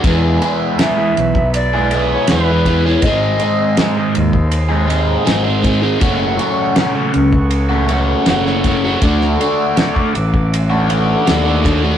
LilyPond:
<<
  \new Staff \with { instrumentName = "Tonewheel organ" } { \time 4/4 \key fis \minor \tempo 4 = 80 << { <b' e'' b''>1 | <bis' dis'' bis''>1 | <cis'' fis'' cis'''>1 | <e'' fis'' d'''>1 | } \\ { gis'1~ | gis'1 | a'1~ | a'1 | } >> }
  \new Staff \with { instrumentName = "Flute" } { \time 4/4 \key fis \minor r4 e''4 d''8. cis''16 b'8. cis''16 | dis''4. r2 r8 | r1 | r1 | }
  \new Staff \with { instrumentName = "Overdriven electric guitar" } { \time 4/4 \key fis \minor <e, e gis b e' gis'>8 <gis b e' gis'>8 <e, e gis b e' gis'>16 <gis b e' gis'>8. r16 <gis b e' gis'>16 <gis b e' gis'>8 <e, e gis b e' gis'>16 <gis b e' gis'>16 <gis b e' gis'>16 <gis b e' gis'>16 | <gis, dis gis bis dis' gis'>8 <gis bis dis' gis'>8 <gis, dis gis bis dis' gis'>16 <gis bis dis' gis'>8. r16 <gis bis dis' gis'>16 <gis bis dis' gis'>8 <gis, dis gis bis dis' gis'>16 <gis bis dis' gis'>16 <gis bis dis' gis'>16 <gis bis dis' gis'>16 | <fis, cis fis a cis' fis'>8 <fis a cis' fis'>8 <fis, cis fis a cis' fis'>16 <fis a cis' fis'>8. r16 <fis a cis' fis'>16 <fis a cis' fis'>8 <fis, cis fis a cis' fis'>16 <fis a cis' fis'>16 <fis a cis' fis'>16 <fis a cis' fis'>16 | <d a d' fis'>8 <d a d' fis'>8 <d a d' fis'>16 <a d' fis'>8. r16 <a d' fis'>16 <d a d' fis'>8 <d a d' fis'>16 <a d' fis'>16 <d a d' fis'>16 <a d' fis'>16 | }
  \new Staff \with { instrumentName = "Fingered electric bass" } { \clef bass \time 4/4 \key fis \minor e,8 r4 b,,4. e,4 | gis,,8 r4 dis,4. gis,,4 | fis,,8 r4 cis,4. fis,,4 | d,8 r4 a,,4. dis,4 | }
  \new DrumStaff \with { instrumentName = "Drums" } \drummode { \time 4/4 <bd cymr>8 cymr8 <cymr sn>8 cymr16 bd16 cymr8 cymr8 <cymr sn>8 <bd cymr>8 | <bd cymr>8 cymr8 <cymr sn>8 cymr16 bd16 cymr8 cymr8 <cymr sn>8 <bd cymr>8 | <bd cymr>8 cymr8 <cymr sn>8 cymr16 bd16 cymr8 cymr8 <cymr sn>16 sn16 <bd cymr>8 | <bd cymr>16 sn16 cymr8 <cymr sn>16 bd16 cymr16 bd16 cymr8 cymr8 <cymr sn>8 <bd cymr>8 | }
>>